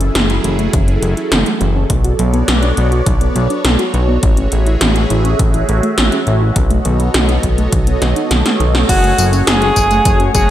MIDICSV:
0, 0, Header, 1, 7, 480
1, 0, Start_track
1, 0, Key_signature, 3, "minor"
1, 0, Tempo, 582524
1, 1566, Time_signature, 4, 2, 24, 8
1, 8654, End_track
2, 0, Start_track
2, 0, Title_t, "Alto saxophone"
2, 0, Program_c, 0, 65
2, 7327, Note_on_c, 0, 66, 103
2, 7626, Note_off_c, 0, 66, 0
2, 7803, Note_on_c, 0, 68, 102
2, 8428, Note_off_c, 0, 68, 0
2, 8525, Note_on_c, 0, 68, 101
2, 8654, Note_off_c, 0, 68, 0
2, 8654, End_track
3, 0, Start_track
3, 0, Title_t, "Analog synth pad"
3, 0, Program_c, 1, 89
3, 0, Note_on_c, 1, 54, 82
3, 0, Note_on_c, 1, 61, 71
3, 0, Note_on_c, 1, 64, 73
3, 0, Note_on_c, 1, 68, 74
3, 0, Note_on_c, 1, 69, 74
3, 1546, Note_off_c, 1, 68, 0
3, 1547, Note_off_c, 1, 54, 0
3, 1547, Note_off_c, 1, 61, 0
3, 1547, Note_off_c, 1, 64, 0
3, 1565, Note_on_c, 1, 73, 72
3, 1565, Note_on_c, 1, 74, 88
3, 1566, Note_on_c, 1, 59, 77
3, 1566, Note_on_c, 1, 66, 72
3, 3452, Note_off_c, 1, 69, 0
3, 3466, Note_off_c, 1, 59, 0
3, 3466, Note_off_c, 1, 74, 0
3, 3483, Note_on_c, 1, 68, 74
3, 3484, Note_on_c, 1, 57, 82
3, 3485, Note_on_c, 1, 76, 87
3, 5372, Note_off_c, 1, 73, 0
3, 5385, Note_off_c, 1, 57, 0
3, 5385, Note_off_c, 1, 68, 0
3, 5386, Note_off_c, 1, 76, 0
3, 5405, Note_on_c, 1, 69, 75
3, 5405, Note_on_c, 1, 75, 89
3, 5406, Note_on_c, 1, 59, 80
3, 5406, Note_on_c, 1, 73, 72
3, 7293, Note_off_c, 1, 66, 0
3, 7306, Note_off_c, 1, 69, 0
3, 7306, Note_off_c, 1, 73, 0
3, 7306, Note_off_c, 1, 75, 0
3, 7307, Note_off_c, 1, 59, 0
3, 7326, Note_on_c, 1, 57, 76
3, 7328, Note_on_c, 1, 66, 89
3, 8654, Note_off_c, 1, 57, 0
3, 8654, Note_off_c, 1, 66, 0
3, 8654, End_track
4, 0, Start_track
4, 0, Title_t, "Analog polysynth"
4, 0, Program_c, 2, 90
4, 7327, Note_on_c, 2, 57, 85
4, 7327, Note_on_c, 2, 61, 77
4, 7327, Note_on_c, 2, 66, 77
4, 7327, Note_on_c, 2, 68, 78
4, 7328, Note_on_c, 2, 73, 92
4, 8497, Note_off_c, 2, 57, 0
4, 8497, Note_off_c, 2, 68, 0
4, 8498, Note_off_c, 2, 61, 0
4, 8498, Note_off_c, 2, 66, 0
4, 8498, Note_off_c, 2, 73, 0
4, 8526, Note_on_c, 2, 66, 93
4, 8526, Note_on_c, 2, 68, 91
4, 8527, Note_on_c, 2, 57, 101
4, 8527, Note_on_c, 2, 61, 90
4, 8527, Note_on_c, 2, 73, 109
4, 8654, Note_off_c, 2, 57, 0
4, 8654, Note_off_c, 2, 61, 0
4, 8654, Note_off_c, 2, 66, 0
4, 8654, Note_off_c, 2, 68, 0
4, 8654, Note_off_c, 2, 73, 0
4, 8654, End_track
5, 0, Start_track
5, 0, Title_t, "Synth arpeggio sound"
5, 0, Program_c, 3, 84
5, 6, Note_on_c, 3, 61, 76
5, 47, Note_off_c, 3, 61, 0
5, 127, Note_on_c, 3, 52, 84
5, 229, Note_off_c, 3, 52, 0
5, 246, Note_on_c, 3, 64, 74
5, 315, Note_off_c, 3, 64, 0
5, 367, Note_on_c, 3, 52, 73
5, 407, Note_off_c, 3, 52, 0
5, 487, Note_on_c, 3, 57, 99
5, 527, Note_off_c, 3, 57, 0
5, 606, Note_on_c, 3, 52, 102
5, 674, Note_off_c, 3, 52, 0
5, 725, Note_on_c, 3, 61, 78
5, 766, Note_off_c, 3, 61, 0
5, 846, Note_on_c, 3, 52, 79
5, 948, Note_off_c, 3, 52, 0
5, 964, Note_on_c, 3, 64, 77
5, 1033, Note_off_c, 3, 64, 0
5, 1083, Note_on_c, 3, 52, 81
5, 1126, Note_off_c, 3, 52, 0
5, 1204, Note_on_c, 3, 57, 102
5, 1246, Note_off_c, 3, 57, 0
5, 1323, Note_on_c, 3, 52, 103
5, 1393, Note_off_c, 3, 52, 0
5, 1444, Note_on_c, 3, 61, 76
5, 1486, Note_off_c, 3, 61, 0
5, 1564, Note_on_c, 3, 54, 80
5, 1667, Note_off_c, 3, 54, 0
5, 1685, Note_on_c, 3, 66, 78
5, 1754, Note_off_c, 3, 66, 0
5, 1804, Note_on_c, 3, 54, 76
5, 1846, Note_off_c, 3, 54, 0
5, 1924, Note_on_c, 3, 59, 100
5, 1966, Note_off_c, 3, 59, 0
5, 2044, Note_on_c, 3, 54, 107
5, 2113, Note_off_c, 3, 54, 0
5, 2164, Note_on_c, 3, 62, 74
5, 2206, Note_off_c, 3, 62, 0
5, 2285, Note_on_c, 3, 54, 78
5, 2388, Note_off_c, 3, 54, 0
5, 2404, Note_on_c, 3, 66, 75
5, 2473, Note_off_c, 3, 66, 0
5, 2523, Note_on_c, 3, 54, 82
5, 2566, Note_off_c, 3, 54, 0
5, 2644, Note_on_c, 3, 59, 101
5, 2686, Note_off_c, 3, 59, 0
5, 2763, Note_on_c, 3, 54, 103
5, 2833, Note_off_c, 3, 54, 0
5, 2884, Note_on_c, 3, 62, 78
5, 2926, Note_off_c, 3, 62, 0
5, 3002, Note_on_c, 3, 54, 81
5, 3107, Note_off_c, 3, 54, 0
5, 3123, Note_on_c, 3, 66, 77
5, 3193, Note_off_c, 3, 66, 0
5, 3242, Note_on_c, 3, 54, 79
5, 3285, Note_off_c, 3, 54, 0
5, 3363, Note_on_c, 3, 59, 100
5, 3405, Note_off_c, 3, 59, 0
5, 3482, Note_on_c, 3, 52, 98
5, 3552, Note_off_c, 3, 52, 0
5, 3604, Note_on_c, 3, 61, 76
5, 3646, Note_off_c, 3, 61, 0
5, 3725, Note_on_c, 3, 52, 75
5, 3828, Note_off_c, 3, 52, 0
5, 3846, Note_on_c, 3, 64, 77
5, 3914, Note_off_c, 3, 64, 0
5, 3964, Note_on_c, 3, 52, 87
5, 4006, Note_off_c, 3, 52, 0
5, 4085, Note_on_c, 3, 57, 97
5, 4126, Note_off_c, 3, 57, 0
5, 4204, Note_on_c, 3, 52, 102
5, 4274, Note_off_c, 3, 52, 0
5, 4324, Note_on_c, 3, 61, 77
5, 4366, Note_off_c, 3, 61, 0
5, 4446, Note_on_c, 3, 52, 86
5, 4548, Note_off_c, 3, 52, 0
5, 4564, Note_on_c, 3, 64, 75
5, 4633, Note_off_c, 3, 64, 0
5, 4685, Note_on_c, 3, 52, 78
5, 4726, Note_off_c, 3, 52, 0
5, 4803, Note_on_c, 3, 57, 105
5, 4845, Note_off_c, 3, 57, 0
5, 4923, Note_on_c, 3, 52, 102
5, 4993, Note_off_c, 3, 52, 0
5, 5045, Note_on_c, 3, 61, 77
5, 5086, Note_off_c, 3, 61, 0
5, 5165, Note_on_c, 3, 52, 81
5, 5268, Note_off_c, 3, 52, 0
5, 5285, Note_on_c, 3, 64, 75
5, 5354, Note_off_c, 3, 64, 0
5, 5405, Note_on_c, 3, 51, 81
5, 5446, Note_off_c, 3, 51, 0
5, 5524, Note_on_c, 3, 57, 104
5, 5566, Note_off_c, 3, 57, 0
5, 5644, Note_on_c, 3, 51, 103
5, 5713, Note_off_c, 3, 51, 0
5, 5765, Note_on_c, 3, 59, 76
5, 5806, Note_off_c, 3, 59, 0
5, 5885, Note_on_c, 3, 51, 86
5, 5988, Note_off_c, 3, 51, 0
5, 6004, Note_on_c, 3, 63, 76
5, 6073, Note_off_c, 3, 63, 0
5, 6125, Note_on_c, 3, 51, 77
5, 6166, Note_off_c, 3, 51, 0
5, 6245, Note_on_c, 3, 57, 105
5, 6286, Note_off_c, 3, 57, 0
5, 6366, Note_on_c, 3, 51, 102
5, 6434, Note_off_c, 3, 51, 0
5, 6486, Note_on_c, 3, 59, 75
5, 6527, Note_off_c, 3, 59, 0
5, 6607, Note_on_c, 3, 51, 80
5, 6709, Note_off_c, 3, 51, 0
5, 6725, Note_on_c, 3, 63, 79
5, 6794, Note_off_c, 3, 63, 0
5, 6846, Note_on_c, 3, 51, 81
5, 6887, Note_off_c, 3, 51, 0
5, 6965, Note_on_c, 3, 57, 103
5, 7006, Note_off_c, 3, 57, 0
5, 7085, Note_on_c, 3, 51, 103
5, 7154, Note_off_c, 3, 51, 0
5, 7205, Note_on_c, 3, 59, 78
5, 7247, Note_off_c, 3, 59, 0
5, 7326, Note_on_c, 3, 54, 85
5, 7367, Note_off_c, 3, 54, 0
5, 7446, Note_on_c, 3, 57, 102
5, 7487, Note_off_c, 3, 57, 0
5, 7566, Note_on_c, 3, 54, 104
5, 7635, Note_off_c, 3, 54, 0
5, 7686, Note_on_c, 3, 61, 77
5, 7727, Note_off_c, 3, 61, 0
5, 7806, Note_on_c, 3, 54, 84
5, 7908, Note_off_c, 3, 54, 0
5, 7927, Note_on_c, 3, 66, 78
5, 7995, Note_off_c, 3, 66, 0
5, 8045, Note_on_c, 3, 54, 76
5, 8086, Note_off_c, 3, 54, 0
5, 8166, Note_on_c, 3, 57, 104
5, 8207, Note_off_c, 3, 57, 0
5, 8286, Note_on_c, 3, 54, 103
5, 8354, Note_off_c, 3, 54, 0
5, 8406, Note_on_c, 3, 61, 77
5, 8447, Note_off_c, 3, 61, 0
5, 8527, Note_on_c, 3, 54, 82
5, 8629, Note_off_c, 3, 54, 0
5, 8654, End_track
6, 0, Start_track
6, 0, Title_t, "Analog synth bass"
6, 0, Program_c, 4, 38
6, 0, Note_on_c, 4, 30, 99
6, 87, Note_off_c, 4, 30, 0
6, 123, Note_on_c, 4, 30, 94
6, 326, Note_off_c, 4, 30, 0
6, 363, Note_on_c, 4, 30, 95
6, 567, Note_off_c, 4, 30, 0
6, 605, Note_on_c, 4, 30, 83
6, 808, Note_off_c, 4, 30, 0
6, 843, Note_on_c, 4, 30, 94
6, 945, Note_off_c, 4, 30, 0
6, 1085, Note_on_c, 4, 30, 90
6, 1186, Note_off_c, 4, 30, 0
6, 1324, Note_on_c, 4, 30, 91
6, 1527, Note_off_c, 4, 30, 0
6, 1565, Note_on_c, 4, 35, 99
6, 1767, Note_off_c, 4, 35, 0
6, 1805, Note_on_c, 4, 35, 97
6, 2007, Note_off_c, 4, 35, 0
6, 2045, Note_on_c, 4, 35, 98
6, 2247, Note_off_c, 4, 35, 0
6, 2286, Note_on_c, 4, 35, 93
6, 2488, Note_off_c, 4, 35, 0
6, 2525, Note_on_c, 4, 35, 83
6, 2727, Note_off_c, 4, 35, 0
6, 2765, Note_on_c, 4, 35, 97
6, 2866, Note_off_c, 4, 35, 0
6, 3003, Note_on_c, 4, 35, 90
6, 3106, Note_off_c, 4, 35, 0
6, 3244, Note_on_c, 4, 35, 92
6, 3447, Note_off_c, 4, 35, 0
6, 3486, Note_on_c, 4, 33, 101
6, 3688, Note_off_c, 4, 33, 0
6, 3726, Note_on_c, 4, 33, 99
6, 3928, Note_off_c, 4, 33, 0
6, 3966, Note_on_c, 4, 33, 97
6, 4168, Note_off_c, 4, 33, 0
6, 4206, Note_on_c, 4, 33, 95
6, 4408, Note_off_c, 4, 33, 0
6, 4445, Note_on_c, 4, 33, 82
6, 4647, Note_off_c, 4, 33, 0
6, 4687, Note_on_c, 4, 33, 99
6, 4788, Note_off_c, 4, 33, 0
6, 4928, Note_on_c, 4, 33, 86
6, 5028, Note_off_c, 4, 33, 0
6, 5167, Note_on_c, 4, 33, 92
6, 5368, Note_off_c, 4, 33, 0
6, 5405, Note_on_c, 4, 35, 98
6, 5607, Note_off_c, 4, 35, 0
6, 5647, Note_on_c, 4, 35, 98
6, 5848, Note_off_c, 4, 35, 0
6, 5885, Note_on_c, 4, 35, 96
6, 6087, Note_off_c, 4, 35, 0
6, 6126, Note_on_c, 4, 35, 93
6, 6328, Note_off_c, 4, 35, 0
6, 6366, Note_on_c, 4, 35, 83
6, 6568, Note_off_c, 4, 35, 0
6, 6606, Note_on_c, 4, 35, 100
6, 6707, Note_off_c, 4, 35, 0
6, 6846, Note_on_c, 4, 35, 90
6, 6947, Note_off_c, 4, 35, 0
6, 7085, Note_on_c, 4, 35, 93
6, 7287, Note_off_c, 4, 35, 0
6, 7326, Note_on_c, 4, 30, 100
6, 7528, Note_off_c, 4, 30, 0
6, 7567, Note_on_c, 4, 30, 100
6, 7768, Note_off_c, 4, 30, 0
6, 7806, Note_on_c, 4, 30, 99
6, 8008, Note_off_c, 4, 30, 0
6, 8046, Note_on_c, 4, 30, 96
6, 8248, Note_off_c, 4, 30, 0
6, 8286, Note_on_c, 4, 30, 83
6, 8488, Note_off_c, 4, 30, 0
6, 8526, Note_on_c, 4, 30, 100
6, 8627, Note_off_c, 4, 30, 0
6, 8654, End_track
7, 0, Start_track
7, 0, Title_t, "Drums"
7, 5, Note_on_c, 9, 42, 39
7, 87, Note_off_c, 9, 42, 0
7, 125, Note_on_c, 9, 38, 116
7, 125, Note_on_c, 9, 42, 87
7, 207, Note_off_c, 9, 38, 0
7, 207, Note_off_c, 9, 42, 0
7, 246, Note_on_c, 9, 42, 36
7, 328, Note_off_c, 9, 42, 0
7, 365, Note_on_c, 9, 42, 61
7, 448, Note_off_c, 9, 42, 0
7, 486, Note_on_c, 9, 42, 37
7, 568, Note_off_c, 9, 42, 0
7, 605, Note_on_c, 9, 36, 118
7, 605, Note_on_c, 9, 42, 85
7, 687, Note_off_c, 9, 42, 0
7, 688, Note_off_c, 9, 36, 0
7, 725, Note_on_c, 9, 42, 36
7, 807, Note_off_c, 9, 42, 0
7, 845, Note_on_c, 9, 42, 63
7, 927, Note_off_c, 9, 42, 0
7, 966, Note_on_c, 9, 42, 38
7, 1048, Note_off_c, 9, 42, 0
7, 1085, Note_on_c, 9, 38, 116
7, 1085, Note_on_c, 9, 42, 84
7, 1167, Note_off_c, 9, 38, 0
7, 1167, Note_off_c, 9, 42, 0
7, 1205, Note_on_c, 9, 42, 38
7, 1287, Note_off_c, 9, 42, 0
7, 1324, Note_on_c, 9, 42, 37
7, 1407, Note_off_c, 9, 42, 0
7, 1564, Note_on_c, 9, 42, 84
7, 1565, Note_on_c, 9, 36, 107
7, 1647, Note_off_c, 9, 36, 0
7, 1647, Note_off_c, 9, 42, 0
7, 1685, Note_on_c, 9, 42, 36
7, 1767, Note_off_c, 9, 42, 0
7, 1805, Note_on_c, 9, 42, 64
7, 1887, Note_off_c, 9, 42, 0
7, 1925, Note_on_c, 9, 42, 38
7, 2007, Note_off_c, 9, 42, 0
7, 2044, Note_on_c, 9, 38, 113
7, 2044, Note_on_c, 9, 42, 86
7, 2126, Note_off_c, 9, 38, 0
7, 2126, Note_off_c, 9, 42, 0
7, 2164, Note_on_c, 9, 42, 36
7, 2246, Note_off_c, 9, 42, 0
7, 2285, Note_on_c, 9, 42, 60
7, 2367, Note_off_c, 9, 42, 0
7, 2405, Note_on_c, 9, 42, 37
7, 2488, Note_off_c, 9, 42, 0
7, 2525, Note_on_c, 9, 36, 114
7, 2525, Note_on_c, 9, 42, 86
7, 2607, Note_off_c, 9, 42, 0
7, 2608, Note_off_c, 9, 36, 0
7, 2646, Note_on_c, 9, 42, 37
7, 2728, Note_off_c, 9, 42, 0
7, 2766, Note_on_c, 9, 42, 60
7, 2848, Note_off_c, 9, 42, 0
7, 2886, Note_on_c, 9, 42, 39
7, 2968, Note_off_c, 9, 42, 0
7, 3004, Note_on_c, 9, 38, 108
7, 3004, Note_on_c, 9, 42, 86
7, 3086, Note_off_c, 9, 38, 0
7, 3086, Note_off_c, 9, 42, 0
7, 3124, Note_on_c, 9, 42, 38
7, 3207, Note_off_c, 9, 42, 0
7, 3245, Note_on_c, 9, 42, 38
7, 3328, Note_off_c, 9, 42, 0
7, 3484, Note_on_c, 9, 42, 89
7, 3486, Note_on_c, 9, 36, 110
7, 3566, Note_off_c, 9, 42, 0
7, 3568, Note_off_c, 9, 36, 0
7, 3603, Note_on_c, 9, 42, 36
7, 3685, Note_off_c, 9, 42, 0
7, 3723, Note_on_c, 9, 42, 66
7, 3805, Note_off_c, 9, 42, 0
7, 3844, Note_on_c, 9, 42, 39
7, 3926, Note_off_c, 9, 42, 0
7, 3963, Note_on_c, 9, 38, 112
7, 3963, Note_on_c, 9, 42, 92
7, 4046, Note_off_c, 9, 38, 0
7, 4046, Note_off_c, 9, 42, 0
7, 4085, Note_on_c, 9, 42, 36
7, 4167, Note_off_c, 9, 42, 0
7, 4205, Note_on_c, 9, 42, 62
7, 4287, Note_off_c, 9, 42, 0
7, 4325, Note_on_c, 9, 42, 37
7, 4408, Note_off_c, 9, 42, 0
7, 4444, Note_on_c, 9, 42, 88
7, 4446, Note_on_c, 9, 36, 109
7, 4527, Note_off_c, 9, 42, 0
7, 4528, Note_off_c, 9, 36, 0
7, 4565, Note_on_c, 9, 42, 38
7, 4648, Note_off_c, 9, 42, 0
7, 4686, Note_on_c, 9, 42, 63
7, 4769, Note_off_c, 9, 42, 0
7, 4807, Note_on_c, 9, 42, 39
7, 4889, Note_off_c, 9, 42, 0
7, 4925, Note_on_c, 9, 38, 113
7, 4925, Note_on_c, 9, 42, 87
7, 5007, Note_off_c, 9, 38, 0
7, 5007, Note_off_c, 9, 42, 0
7, 5044, Note_on_c, 9, 42, 40
7, 5127, Note_off_c, 9, 42, 0
7, 5165, Note_on_c, 9, 42, 38
7, 5247, Note_off_c, 9, 42, 0
7, 5405, Note_on_c, 9, 36, 106
7, 5405, Note_on_c, 9, 42, 96
7, 5487, Note_off_c, 9, 42, 0
7, 5488, Note_off_c, 9, 36, 0
7, 5525, Note_on_c, 9, 42, 40
7, 5607, Note_off_c, 9, 42, 0
7, 5645, Note_on_c, 9, 42, 68
7, 5727, Note_off_c, 9, 42, 0
7, 5766, Note_on_c, 9, 42, 40
7, 5848, Note_off_c, 9, 42, 0
7, 5886, Note_on_c, 9, 38, 113
7, 5886, Note_on_c, 9, 42, 95
7, 5968, Note_off_c, 9, 38, 0
7, 5968, Note_off_c, 9, 42, 0
7, 6005, Note_on_c, 9, 42, 38
7, 6088, Note_off_c, 9, 42, 0
7, 6125, Note_on_c, 9, 42, 66
7, 6126, Note_on_c, 9, 36, 59
7, 6208, Note_off_c, 9, 36, 0
7, 6208, Note_off_c, 9, 42, 0
7, 6247, Note_on_c, 9, 42, 39
7, 6329, Note_off_c, 9, 42, 0
7, 6365, Note_on_c, 9, 42, 93
7, 6366, Note_on_c, 9, 36, 116
7, 6447, Note_off_c, 9, 42, 0
7, 6448, Note_off_c, 9, 36, 0
7, 6486, Note_on_c, 9, 42, 40
7, 6568, Note_off_c, 9, 42, 0
7, 6606, Note_on_c, 9, 38, 61
7, 6606, Note_on_c, 9, 42, 67
7, 6688, Note_off_c, 9, 38, 0
7, 6688, Note_off_c, 9, 42, 0
7, 6727, Note_on_c, 9, 42, 42
7, 6809, Note_off_c, 9, 42, 0
7, 6846, Note_on_c, 9, 38, 76
7, 6846, Note_on_c, 9, 42, 91
7, 6929, Note_off_c, 9, 38, 0
7, 6929, Note_off_c, 9, 42, 0
7, 6968, Note_on_c, 9, 38, 74
7, 6968, Note_on_c, 9, 42, 42
7, 7050, Note_off_c, 9, 38, 0
7, 7050, Note_off_c, 9, 42, 0
7, 7090, Note_on_c, 9, 42, 39
7, 7172, Note_off_c, 9, 42, 0
7, 7208, Note_on_c, 9, 38, 86
7, 7290, Note_off_c, 9, 38, 0
7, 7326, Note_on_c, 9, 36, 120
7, 7328, Note_on_c, 9, 42, 99
7, 7328, Note_on_c, 9, 49, 105
7, 7328, Note_on_c, 9, 54, 42
7, 7408, Note_off_c, 9, 36, 0
7, 7410, Note_off_c, 9, 42, 0
7, 7410, Note_off_c, 9, 49, 0
7, 7410, Note_off_c, 9, 54, 0
7, 7448, Note_on_c, 9, 42, 41
7, 7531, Note_off_c, 9, 42, 0
7, 7568, Note_on_c, 9, 42, 73
7, 7568, Note_on_c, 9, 54, 76
7, 7650, Note_off_c, 9, 42, 0
7, 7650, Note_off_c, 9, 54, 0
7, 7687, Note_on_c, 9, 42, 44
7, 7687, Note_on_c, 9, 54, 33
7, 7769, Note_off_c, 9, 42, 0
7, 7769, Note_off_c, 9, 54, 0
7, 7806, Note_on_c, 9, 38, 118
7, 7806, Note_on_c, 9, 42, 98
7, 7806, Note_on_c, 9, 54, 42
7, 7888, Note_off_c, 9, 38, 0
7, 7888, Note_off_c, 9, 42, 0
7, 7888, Note_off_c, 9, 54, 0
7, 7925, Note_on_c, 9, 42, 41
7, 8007, Note_off_c, 9, 42, 0
7, 8044, Note_on_c, 9, 42, 69
7, 8044, Note_on_c, 9, 54, 74
7, 8046, Note_on_c, 9, 36, 63
7, 8126, Note_off_c, 9, 42, 0
7, 8126, Note_off_c, 9, 54, 0
7, 8128, Note_off_c, 9, 36, 0
7, 8164, Note_on_c, 9, 42, 43
7, 8164, Note_on_c, 9, 54, 30
7, 8246, Note_off_c, 9, 42, 0
7, 8246, Note_off_c, 9, 54, 0
7, 8284, Note_on_c, 9, 42, 94
7, 8284, Note_on_c, 9, 54, 40
7, 8286, Note_on_c, 9, 36, 122
7, 8366, Note_off_c, 9, 42, 0
7, 8366, Note_off_c, 9, 54, 0
7, 8368, Note_off_c, 9, 36, 0
7, 8404, Note_on_c, 9, 42, 41
7, 8486, Note_off_c, 9, 42, 0
7, 8524, Note_on_c, 9, 42, 71
7, 8524, Note_on_c, 9, 54, 74
7, 8526, Note_on_c, 9, 36, 108
7, 8607, Note_off_c, 9, 42, 0
7, 8607, Note_off_c, 9, 54, 0
7, 8609, Note_off_c, 9, 36, 0
7, 8654, End_track
0, 0, End_of_file